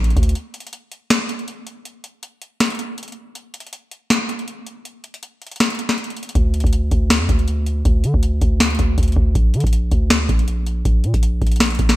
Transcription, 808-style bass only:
0.00 0.16 A#1 loud
0.17 0.35 D2 loud
6.35 6.63 D2 loud
6.64 6.90 D2 loud
6.92 7.22 D2 loud
7.20 7.29 F2 loud
7.29 7.83 D2 loud
7.85 8.06 D2 loud
8.04 8.14 D3 loud
8.14 8.40 D2 loud
8.42 8.78 D2 loud
8.79 8.97 D2 loud
8.98 9.16 D2 loud
9.16 9.35 D2 loud
9.35 9.56 A#1 loud
9.54 9.64 D3 loud
9.64 9.90 A#1 loud
9.92 10.28 D2 loud
10.29 10.83 A#1 loud
10.85 11.06 A#1 loud
11.04 11.14 A#2 loud
11.14 11.40 A#1 loud
11.42 11.78 A#1 loud
11.79 11.96 A#1 loud

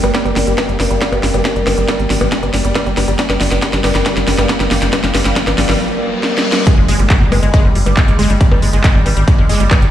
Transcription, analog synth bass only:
0.04 0.11 G1 medium
0.25 0.33 G1 medium
0.36 0.44 G1 loud
0.47 0.55 G1 loud
0.69 0.77 G1 medium
0.80 0.87 G1 medium
0.91 0.98 G1 medium
1.12 1.20 G1 medium
1.23 1.31 G1 loud
1.34 1.42 G1 medium
1.56 1.64 G1 medium
1.67 1.74 G1 loud
1.78 1.85 G1 loud
1.99 2.07 G#1 medium
2.10 2.18 G#1 loud
2.21 2.29 G#1 loud
2.43 2.50 G1 medium
2.54 2.61 G1 medium
2.64 2.72 G1 medium
2.86 2.94 G1 medium
2.97 3.05 G1 loud
3.08 3.16 G1 medium
3.30 3.37 G1 medium
3.41 3.48 G1 loud
3.52 3.59 G1 medium
3.73 3.81 G1 medium
3.84 3.92 G1 loud
3.95 4.03 G1 loud
4.17 4.24 G1 medium
4.28 4.35 G1 medium
4.38 4.46 G1 loud
4.60 4.68 G1 medium
4.71 4.79 G1 loud
4.82 4.90 G1 medium
5.04 5.11 G1 medium
5.15 5.22 G1 loud
5.25 5.33 G1 medium
5.47 5.55 G#1 medium
5.58 5.66 G#1 loud
5.69 5.77 G#1 loud
6.78 6.85 G1 medium
6.88 6.96 G1 loud
6.99 7.07 G1 loud
7.21 7.29 G1 medium
7.32 7.40 G1 loud
7.43 7.50 G1 loud
7.65 7.72 G1 medium
7.75 7.83 G1 loud
7.86 7.94 G1 medium
8.08 8.16 G1 medium
8.19 8.27 G1 loud
8.30 8.37 G1 medium
8.52 8.59 G1 medium
8.62 8.70 G1 loud
8.73 8.81 G1 loud
8.95 9.03 G#1 medium
9.06 9.14 G#1 loud
9.17 9.24 G#1 loud
9.38 9.46 G1 medium
9.49 9.57 G1 loud
9.60 9.68 G1 loud
9.82 9.90 G1 medium

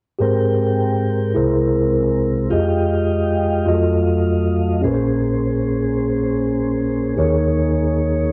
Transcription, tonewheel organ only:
0.21 2.49 G#3 soft
0.21 1.36 C4 soft
0.21 2.51 A#4 soft
0.21 1.36 G5 soft
1.37 2.52 C4 soft
1.37 2.52 E4 soft
2.50 3.66 G#3 soft
2.50 4.82 D#5 soft
2.50 4.82 F5 soft
2.50 3.67 G5 soft
3.69 4.84 F#3 soft
3.69 4.84 A3 soft
4.84 8.30 A#3 soft
4.84 7.15 C#4 soft
4.84 8.30 G#4 soft
4.84 7.14 C5 medium
7.18 8.32 D#4 soft
7.18 8.32 C#5 medium

